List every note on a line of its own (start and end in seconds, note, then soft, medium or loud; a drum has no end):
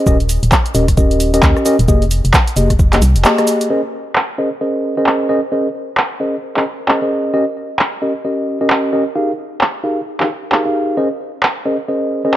0.06 0.39 D#1 loud
0.06 0.17 C#4 loud
0.06 0.17 G4 medium
0.06 0.17 A#4 medium
0.06 0.17 D#5 loud
0.06 kick loud
0.06 shaker soft
0.20 closed hi-hat soft
0.20 shaker soft
0.29 open hi-hat loud
0.29 shaker medium
0.43 0.50 D#1 medium
0.43 closed hi-hat medium
0.43 shaker soft
0.52 kick loud
0.52 clap loud
0.52 shaker soft
0.66 closed hi-hat medium
0.66 shaker soft
0.75 1.40 D#1 medium
0.75 0.85 C#4 medium
0.75 0.85 G4 medium
0.75 0.85 A#4 medium
0.75 0.85 D#5 medium
0.75 open hi-hat loud
0.75 shaker medium
0.88 kick medium
0.88 cross-stick soft
0.88 closed hi-hat medium
0.88 shaker soft
0.97 1.31 C#4 medium
0.97 1.31 G4 medium
0.97 1.31 A#4 medium
0.97 1.31 D#5 medium
0.97 kick loud
0.97 shaker soft
1.11 closed hi-hat medium
1.11 shaker soft
1.20 open hi-hat loud
1.20 shaker medium
1.34 1.63 C#4 medium
1.34 1.63 G4 medium
1.34 1.63 A#4 medium
1.34 1.63 D#5 loud
1.34 closed hi-hat medium
1.34 shaker soft
1.43 1.54 D#2 medium
1.43 kick loud
1.43 clap loud
1.43 shaker soft
1.57 cross-stick soft
1.57 shaker soft
1.65 1.76 C#4 loud
1.65 1.76 G4 medium
1.65 1.76 A#4 medium
1.65 1.76 D#5 loud
1.65 open hi-hat loud
1.65 shaker medium
1.79 1.87 D#1 loud
1.79 closed hi-hat medium
1.79 shaker soft
1.88 2.21 F1 loud
1.88 2.04 A#3 medium
1.88 2.04 G4 medium
1.88 2.04 G#4 medium
1.88 2.04 D#5 loud
1.88 kick loud
1.88 shaker soft
2.02 closed hi-hat soft
2.02 shaker soft
2.11 open hi-hat loud
2.11 shaker medium
2.25 2.32 F1 medium
2.25 closed hi-hat medium
2.25 shaker soft
2.34 kick loud
2.34 clap loud
2.34 shaker soft
2.47 closed hi-hat medium
2.47 shaker soft
2.56 3.01 F1 medium
2.56 2.72 A#3 medium
2.56 2.72 G4 medium
2.56 2.72 G#4 medium
2.56 2.72 D#5 medium
2.56 open hi-hat loud
2.56 shaker medium
2.70 kick medium
2.70 cross-stick soft
2.70 closed hi-hat medium
2.70 shaker soft
2.79 kick loud
2.79 shaker soft
2.93 3.00 A#3 medium
2.93 3.00 G4 medium
2.93 3.00 G#4 medium
2.93 3.00 D#5 medium
2.93 clap medium
2.93 closed hi-hat medium
2.93 shaker soft
3.02 3.17 C2 loud
3.02 open hi-hat loud
3.02 shaker medium
3.16 3.25 F1 loud
3.16 closed hi-hat medium
3.16 shaker soft
3.25 3.35 A#3 medium
3.25 3.35 G4 medium
3.25 3.35 G#4 medium
3.25 3.35 D#5 medium
3.25 clap loud
3.25 shaker soft
3.38 3.68 A#3 medium
3.38 3.68 G4 medium
3.38 3.68 G#4 medium
3.38 3.68 D#5 medium
3.38 cross-stick medium
3.38 closed hi-hat soft
3.38 shaker soft
3.47 open hi-hat loud
3.47 shaker medium
3.61 closed hi-hat medium
3.61 shaker soft
3.70 3.80 C#4 medium
3.70 3.80 G#4 medium
3.70 3.80 A#4 medium
3.70 3.80 C5 medium
3.70 3.80 D#5 medium
4.16 clap loud
4.38 4.48 C#4 medium
4.38 4.48 G#4 medium
4.38 4.48 A#4 medium
4.38 4.48 C5 medium
4.38 4.48 D#5 medium
4.61 4.94 C#4 medium
4.61 4.94 G#4 medium
4.61 4.94 A#4 medium
4.61 4.94 C5 medium
4.61 4.94 D#5 medium
4.97 5.27 C#4 medium
4.97 5.27 G#4 medium
4.97 5.27 A#4 medium
4.97 5.27 C5 medium
4.97 5.27 D#5 medium
5.06 clap loud
5.29 5.39 C#4 medium
5.29 5.39 G#4 medium
5.29 5.39 A#4 medium
5.29 5.39 C5 medium
5.29 5.39 D#5 loud
5.52 5.67 C#4 medium
5.52 5.67 G#4 medium
5.52 5.67 A#4 medium
5.52 5.67 C5 medium
5.52 5.67 D#5 medium
5.97 clap loud
6.20 6.35 C#4 medium
6.20 6.35 G#4 medium
6.20 6.35 A#4 medium
6.20 6.35 C5 medium
6.20 6.35 D#5 medium
6.57 6.63 C#4 medium
6.57 6.63 G#4 medium
6.57 6.63 A#4 medium
6.57 6.63 C5 medium
6.57 6.63 D#5 medium
6.57 clap medium
6.88 6.99 C#4 medium
6.88 6.99 G#4 medium
6.88 6.99 A#4 medium
6.88 6.99 C5 medium
6.88 6.99 D#5 medium
6.88 clap loud
7.02 7.32 C#4 medium
7.02 7.32 G#4 medium
7.02 7.32 A#4 medium
7.02 7.32 C5 medium
7.02 7.32 D#5 medium
7.34 7.44 C#4 medium
7.34 7.44 G4 medium
7.34 7.44 A#4 medium
7.34 7.44 D#5 loud
7.79 clap loud
8.02 8.12 C#4 medium
8.02 8.12 G4 medium
8.02 8.12 A#4 medium
8.02 8.12 D#5 medium
8.25 8.58 C#4 medium
8.25 8.58 G4 medium
8.25 8.58 A#4 medium
8.25 8.58 D#5 medium
8.61 8.91 C#4 medium
8.61 8.91 G4 medium
8.61 8.91 A#4 medium
8.61 8.91 D#5 medium
8.70 clap loud
8.93 9.03 C#4 medium
8.93 9.03 G4 medium
8.93 9.03 A#4 medium
8.93 9.03 D#5 medium
9.16 9.31 D#4 medium
9.16 9.31 G4 medium
9.16 9.31 G#4 medium
9.16 9.31 A#4 medium
9.16 9.31 F5 medium
9.61 clap loud
9.84 9.99 D#4 medium
9.84 9.99 G4 medium
9.84 9.99 G#4 medium
9.84 9.99 A#4 medium
9.84 9.99 F5 medium
10.20 10.27 D#4 medium
10.20 10.27 G4 medium
10.20 10.27 G#4 medium
10.20 10.27 A#4 medium
10.20 10.27 F5 medium
10.20 clap medium
10.52 10.62 D#4 medium
10.52 10.62 G4 medium
10.52 10.62 G#4 medium
10.52 10.62 A#4 medium
10.52 10.62 F5 medium
10.52 clap loud
10.66 10.95 D#4 medium
10.66 10.95 G4 medium
10.66 10.95 G#4 medium
10.66 10.95 A#4 medium
10.66 10.95 F5 medium
10.97 11.07 C#4 medium
10.97 11.07 G#4 medium
10.97 11.07 A#4 medium
10.97 11.07 C5 medium
10.97 11.07 D#5 medium
11.43 clap loud
11.66 11.76 C#4 medium
11.66 11.76 G#4 medium
11.66 11.76 A#4 medium
11.66 11.76 C5 medium
11.66 11.76 D#5 medium
11.88 12.22 C#4 medium
11.88 12.22 G#4 medium
11.88 12.22 A#4 medium
11.88 12.22 C5 medium
11.88 12.22 D#5 medium
12.25 12.36 C#4 medium
12.25 12.36 G#4 medium
12.25 12.36 A#4 medium
12.25 12.36 C5 medium
12.25 12.36 D#5 medium